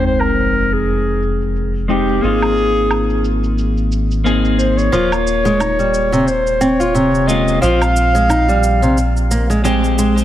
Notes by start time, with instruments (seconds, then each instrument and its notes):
Already playing: analog synth bass F1, clean electric guitar G#3 C4 D#4 G5, sub drop
0.06 clarinet C5, shaker
0.20 clarinet A#4, low woodblock, shaker
0.40 shaker
0.55 shaker
0.73 clarinet G#4, shaker
0.89 shaker
1.08 shaker
1.22 shaker
1.41 shaker
1.56 shaker
1.75 shaker
1.88 clean electric guitar G#3 C4 D#4 G4, clarinet G4, shaker
2.09 shaker
2.21 analog synth bass G#1, clean electric guitar A#3 C4 D#4, clarinet G#4, shaker
2.25 clean electric guitar F4
2.42 low woodblock, shaker
2.57 shaker
2.76 shaker
2.91 low woodblock, shaker
3.10 shaker
3.25 shaker
3.44 shaker
3.58 shaker
3.77 shaker
3.92 shaker
4.11 shaker
4.24 clean electric guitar A#3 C4 D#4 G#4, shaker
4.45 shaker
4.58 clarinet C5, shaker
4.77 clarinet C#5, shaker
4.92 analog synth bass D#1, nylon-string guitar F3, clean electric guitar A#3 F4, shaker
5.12 low woodblock, shaker
5.27 shaker
5.45 nylon-string guitar G#3, shaker
5.60 nylon-string guitar D#4, low woodblock, shaker
5.79 nylon-string guitar G3, shaker
5.94 shaker
6.12 nylon-string guitar C3, shaker
6.26 clarinet C5, shaker
6.47 shaker
6.61 nylon-string guitar C4, clarinet C#5, shaker
6.80 nylon-string guitar F4, shaker
6.95 nylon-string guitar C3, shaker
7.15 shaker
7.27 clean electric guitar G#3 A#3 C#4 F4, clarinet D#5, shaker
7.48 shaker
7.62 analog synth bass A#1, nylon-string guitar F3, clean electric guitar C4 F4, clarinet F5, shaker
7.82 low woodblock, shaker
7.96 shaker
8.15 nylon-string guitar G#3, shaker
8.29 nylon-string guitar D#4, low woodblock, shaker
8.48 nylon-string guitar G3, shaker
8.63 shaker
8.82 nylon-string guitar C3, shaker
8.98 shaker
9.17 shaker
9.31 nylon-string guitar A#3, shaker
9.50 nylon-string guitar G#3, shaker
9.64 clean electric guitar G#3 C4 G4, nylon-string guitar G#3, shaker
9.84 shaker
9.99 nylon-string guitar G#3, shaker
10.18 shaker